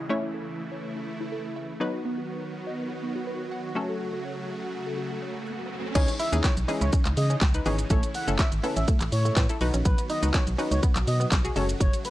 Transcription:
Already playing: C#3 E3, downlifter
0.09 A3 C#4 E4 C#5
0.23 E4
0.34 A4
0.72 C#5
0.96 E4
1.08 A3
1.21 E4
1.32 A4
1.56 E5
1.80 D#3 F#3 B3 D#4 F#4 B4
1.94 F#4
2.05 B3
2.18 F#4
2.29 B4
2.67 D#5
2.91 F#4
3.03 B3
3.16 F#4
3.27 B4
3.51 F#5
3.75 C#3 F#3 A3 C#4 A4
3.89 A4
4.00 F#4, riser
4.13 A4
4.25 C#5
4.62 F#5
4.86 A4
4.98 F#4
5.11 A4
5.22 C#5
5.47 F#6
5.84 A4
5.95 C#2 C#3 E3 G#3 C#4 D#4 G#4 C#5, kick, closed hi-hat, crash, shaker
6.08 muted clean electric guitar stroke, closed hi-hat, shaker
6.19 E4 E5, open hi-hat, shaker
6.32 D#2 E3 G#3 C#4 D#4 G#4, closed hi-hat, shaker
6.44 C#5, muted clean electric guitar stroke, kick, snare, clap, closed hi-hat, shaker
6.57 B1, closed hi-hat, shaker
6.68 E3 G#3 C#4 D#4 G#4, open hi-hat, shaker
6.81 C#2 E4 C#5, closed hi-hat, shaker
6.93 C#4, kick, closed hi-hat, shaker
7.05 C#2, muted clean electric guitar stroke, clap, closed hi-hat, shaker
7.17 C#3 D#5, open hi-hat, shaker
7.30 C#4, closed hi-hat, shaker
7.41 C#2, kick, snare, clap, closed hi-hat, shaker
7.54 D#4 B4, closed hi-hat, shaker
7.66 G#1 E3 G#3 B3 C#4 D#4 G#4 C#5, open hi-hat, shaker
7.79 closed hi-hat, shaker
7.90 A1 A3 C#4 E4 A4 C#5, kick, closed hi-hat, shaker
8.03 closed hi-hat, shaker
8.14 F#5, muted clean electric guitar stroke, open hi-hat, shaker
8.27 F#1 A3 C#4 E4 A4, closed hi-hat, shaker
8.39 E5, kick, snare, clap, closed hi-hat, shaker
8.52 G#1, closed hi-hat, shaker
8.63 B3 C#4 E4 A4, open hi-hat, shaker
8.76 A1 C#4 E5, closed hi-hat, shaker
8.88 A3, kick, closed hi-hat, shaker
9.01 A1, muted clean electric guitar stroke, clap, closed hi-hat, shaker
9.12 A2 C#5, open hi-hat, shaker
9.25 A3, closed hi-hat, shaker
9.37 A2 B3, kick, snare, clap, closed hi-hat, shaker
9.49 E4 A4, closed hi-hat, shaker
9.61 B1 D#3 F#3 B3 D#4 F#4 B4, muted clean electric guitar stroke, open hi-hat, shaker
9.74 A#1 C#4, closed hi-hat, shaker
9.85 B1 B3 B4, kick, closed hi-hat, shaker
9.98 muted clean electric guitar stroke, closed hi-hat, shaker
10.10 D#4 D#5, open hi-hat, shaker
10.23 C#2 D#4 F#4 B4, closed hi-hat, shaker
10.34 C#5, muted clean electric guitar stroke, kick, snare, clap, closed hi-hat, shaker
10.47 B1, closed hi-hat, shaker
10.58 C#4 D#4 F#4 B4, open hi-hat, shaker
10.71 C#2 D#4 C#5, closed hi-hat, shaker
10.83 B3, kick, closed hi-hat, shaker
10.96 B1, muted clean electric guitar stroke, clap, closed hi-hat, shaker
11.07 B2 D#5, open hi-hat, shaker
11.20 B3, closed hi-hat, shaker
11.32 B1, kick, snare, clap, closed hi-hat, shaker
11.45 F#4 G#4, closed hi-hat, shaker
11.56 F#1 C#3 G#3 A3 C#4 F#4 A4 C#5, open hi-hat, shaker
11.69 closed hi-hat, shaker
11.80 F#1 F#3 C#5, kick, closed hi-hat, shaker
11.94 closed hi-hat, shaker
12.05 B4, muted clean electric guitar stroke, open hi-hat, shaker

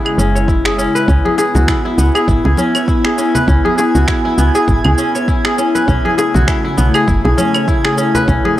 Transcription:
Already playing: C#3 G#3 B3 C#4 E4 F#4
0.05 G#4, claves
0.18 F#1 C#4, shaker
0.35 C#5, shaker
0.48 E4, kick, shaker
0.65 G#4, finger snap
0.78 C#4, shaker
0.95 B4, shaker
1.08 C#2 B3 C#4 G#5, kick, shaker
1.25 G#4, high conga
1.38 G#4, high bongo, shaker
1.55 C#2 F#4, high conga, low conga, shaker
1.68 E4, finger snap, kick, shaker
1.85 E4, high conga
1.98 C#2 B3, shaker
2.15 G#4, claves, shaker
2.28 G#1 E4, kick, shaker
2.45 C#2 G#4, high bongo
2.57 C#4, high conga, shaker
2.75 C#5, claves, shaker
2.88 E4, kick, shaker
3.05 G#4, finger snap, high bongo
3.18 C#4, high bongo, shaker
3.35 B4, low conga, shaker
3.48 C#2 C#4, kick, shaker
3.65 G#4, high conga
3.78 G#4, high bongo, shaker
3.95 C#2 F#4, shaker
4.08 E4, finger snap, kick, shaker
4.25 E4, high conga
4.38 C#2 B3, shaker
4.55 G#4, shaker
4.68 G#1 E4, kick, shaker
4.84 C#2 G#4, low conga, claves
4.98 C#4, shaker
5.15 C#5, shaker
5.28 E4, kick, shaker
5.45 G#4, finger snap
5.58 C#4, shaker
5.75 B4, high bongo, high conga, shaker
5.88 B1 C#3 A3 C#4, kick, shaker
6.05 G#4, high conga
6.18 G#4, high bongo, shaker
6.34 B1 F#4, high conga, low conga, shaker
6.48 E4, finger snap, kick, shaker
6.64 E4, high conga
6.77 B1 B3, shaker
6.94 G#4, claves, shaker
7.07 F#1 E4, kick, shaker
7.25 B1 G#4, high bongo
7.38 C#4, high conga, shaker
7.54 C#5, claves, shaker
7.68 E4, kick, shaker
7.85 G#4, finger snap, high bongo
7.98 C#4, high bongo, shaker
8.15 B4, low conga, shaker
8.28 B1 C#4, kick, shaker
8.45 G#4, high conga

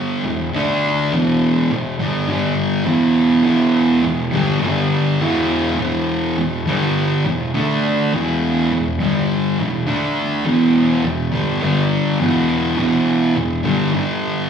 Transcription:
Already playing: G2 D3 G3
0.24 E2 B2
0.53 D3 A3 D4
1.12 E2 B2 E3
1.71 E2 B2
1.99 G2 D3 G3
2.28 G2 D3 G3
2.85 E2 B2 E3
3.44 E2 B2 E3
4.02 E2 B2
4.31 G2 D3 G3
4.60 G2 D3 G3
5.20 E2 B2 E3
5.79 E2 B2 E3
6.38 E2 B2
6.67 G2 D3 G3
7.26 E2 B2
7.54 D3 A3 D4
8.13 E2 B2 E3
8.72 E2 B2
9.00 G2 D3 G3
9.60 E2 B2
9.87 D3 A3 D4
10.45 E2 B2 E3
11.04 E2 B2
11.32 G2 D3 G3
11.61 G2 D3 G3
12.20 E2 B2 E3
12.77 E2 B2 E3
13.36 E2 B2
13.63 G2 D3 G3
13.92 G2 D3 G3

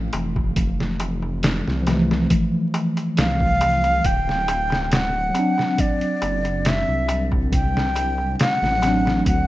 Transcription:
Already playing: E3 F3 A3
0.13 F1, closed hi-hat, darbuka tek
0.36 kick, darbuka tek
0.56 kick, closed hi-hat, darbuka tek
0.80 snare
1.00 closed hi-hat, darbuka tek
1.22 darbuka tek
1.43 snare, closed hi-hat, darbuka tek
1.67 C2, snare
1.82 F3
1.86 A3, snare, closed hi-hat, darbuka tek
1.91 E3
2.11 snare, darbuka tek
2.30 kick, closed hi-hat, darbuka tek
2.74 closed hi-hat, darbuka tek
2.97 closed hi-hat, darbuka tek
3.17 C2 F5, snare, closed hi-hat, darbuka tek
3.40 kick
3.61 closed hi-hat, darbuka tek
3.84 closed hi-hat, darbuka tek
4.04 D1 G5, kick, closed hi-hat, darbuka tek
4.29 snare
4.48 closed hi-hat, darbuka tek
4.70 snare, darbuka tek
4.91 F#5, snare, closed hi-hat, darbuka tek
5.30 F#3
5.35 C4, closed hi-hat, darbuka tek
5.39 D4
5.58 snare, darbuka tek
5.78 D5, kick, closed hi-hat, darbuka tek
6.01 closed hi-hat
6.22 F#1, closed hi-hat, darbuka tek
6.45 closed hi-hat, darbuka tek
6.65 E5, snare, closed hi-hat, darbuka tek
6.89 C2
7.09 closed hi-hat, darbuka tek
7.32 kick, darbuka tek
7.52 G5, kick, closed hi-hat, darbuka tek
7.77 snare
7.95 closed hi-hat, darbuka tek
8.18 darbuka tek
8.39 F#5, snare, closed hi-hat, darbuka tek
8.62 A1, snare
8.78 F#3
8.82 C4, snare, closed hi-hat, darbuka tek
8.87 D4
9.05 snare, darbuka tek
9.25 D2 F#5, kick, closed hi-hat, darbuka tek

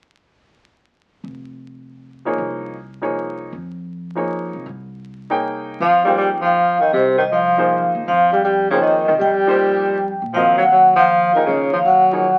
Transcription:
1.24 F1
2.25 F3 A#3 D#4 G#4 C#5
2.38 C2
3.02 F3 A#3 D#4 G#4 C#5
3.52 F2
4.15 F3 A#3 D#4 G#4 C#5
4.54 C3
4.66 C2
5.30 A#3 D#4 G#4 C#5 G5
5.80 F2 F3 F5
6.05 F3 G3 A#3 D#4 G#4 C5 G5
6.18 G3
6.22 G5
6.41 F3
6.45 F5
6.80 D#3 D#5
6.93 C2 C3 C5
7.18 D#3 D#5
7.32 F3 F5
7.57 F3 A#3 D#4 G#4 C5
7.82 F2
7.95 D#2
8.07 F2 F3 F5
8.32 G3 G5
8.44 G3 G5
8.70 C#3 F3 A#3 D#4 G#4 C5 C#5
8.82 D#3 D#5
9.08 C3 D#3 D#5
9.19 F2 G3 G5
9.47 F3 A#3 D#4 G4 C5
10.22 A#2
10.33 D#2 F3 F#3 C4 F4 A#4 D#5 F5
10.58 F#3 F#5
10.71 F#3 F#5
10.96 F3 F5
11.34 D#3 F3 A#3 D#4 G#4 A#4 D#5, muted upright bass stroke
11.46 D#2 C#3
11.51 C#5
11.73 F3 F5
11.85 F#3 F#5
12.12 F3 A#3 D#4 G#4 C#5

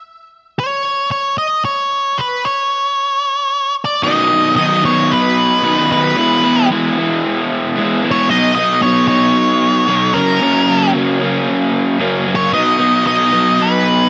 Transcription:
0.59 C#5
1.11 C#5
1.38 D#5
1.65 C#5
2.18 B4
2.45 C#5
3.85 D5
4.03 B2 D#3 F#3 B3 D#4 D#5
4.30 F#3 B3 D#4
4.56 D#3 F#3 B3 D#4 D#5
4.83 F#3 B3 D#4 C#5
5.12 B4
5.62 B2 D#3 F#3 B3 D#4
5.90 F#3 B3 D#4 B4
6.16 E3 G#3 B3 E4
6.43 G#3 B3 E4
6.69 E3 G#3 B3 E4
6.96 G#3 B3 E4
7.76 E3 G#3 B3 E4
8.03 G#3 B3 E4
8.11 C#5
8.29 B2 F#3 B3 D#4 D#5
8.55 B3 D#4 D#5
8.59 F#3
8.82 B2 F#3 B3 D#4 C#5
9.08 F#3 B3 D#4 C#5
9.87 B2 F#3 B3 D#4
10.14 F#2 C#3 F#3 A#3 C#4 A#4
10.40 F#2 C#3 F#3 A#3 C#4
10.67 F#3 A#3 C#4
10.94 C#3 F#3 A#3 C#4
11.20 F#3 A#3 C#4
11.99 F#2 C#3 F#3 A#3 C#4
12.25 F#3 A#3 C#4
12.36 C#5
12.52 B2 F#3 B3 D#4 D#5
12.78 F#3 B3 D#4
13.04 B2 F#3 B3 D#4 D#5
13.31 F#3 B3 D#4
13.62 B4

